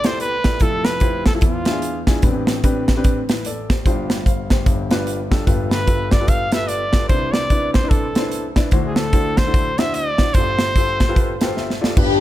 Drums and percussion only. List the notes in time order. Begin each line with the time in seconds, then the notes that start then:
0.04 snare, closed hi-hat
0.20 closed hi-hat
0.44 kick, snare, closed hi-hat
0.60 kick, closed hi-hat
0.85 snare, closed hi-hat
1.00 kick, closed hi-hat
1.26 kick, snare, closed hi-hat
1.41 kick, closed hi-hat
1.65 snare, closed hi-hat
1.82 closed hi-hat
2.07 kick, snare, closed hi-hat
2.22 kick, closed hi-hat
2.47 snare, closed hi-hat
2.64 kick, closed hi-hat
2.88 kick, snare, closed hi-hat
3.04 kick, closed hi-hat
3.29 snare, closed hi-hat
3.45 closed hi-hat
3.70 kick, snare, closed hi-hat
3.86 kick, closed hi-hat
4.10 snare, closed hi-hat
4.26 kick, closed hi-hat
4.50 kick, snare, closed hi-hat
4.66 kick, closed hi-hat
4.91 snare, closed hi-hat
5.07 closed hi-hat
5.32 kick, snare, closed hi-hat
5.47 kick, closed hi-hat
5.71 snare, closed hi-hat
5.87 kick, closed hi-hat
6.11 kick, snare, closed hi-hat
6.28 kick, closed hi-hat
6.52 snare, closed hi-hat
6.69 closed hi-hat
6.93 kick, snare, closed hi-hat
7.09 kick, closed hi-hat
7.34 snare, closed hi-hat
7.50 kick, closed hi-hat
7.74 kick, snare, closed hi-hat
7.91 kick, closed hi-hat
8.15 snare, closed hi-hat
8.32 closed hi-hat
8.56 kick, snare, closed hi-hat
8.71 kick, closed hi-hat
8.96 snare, closed hi-hat
9.13 kick, closed hi-hat
9.37 kick, snare, closed hi-hat
9.54 kick, closed hi-hat
9.78 snare, closed hi-hat
9.94 closed hi-hat
10.18 kick, snare, closed hi-hat
10.34 kick, closed hi-hat
10.59 snare, closed hi-hat
10.76 kick, closed hi-hat
11.00 kick, snare, closed hi-hat
11.16 kick, closed hi-hat
11.41 snare, closed hi-hat
11.57 snare
11.70 snare
11.84 snare
11.97 kick, crash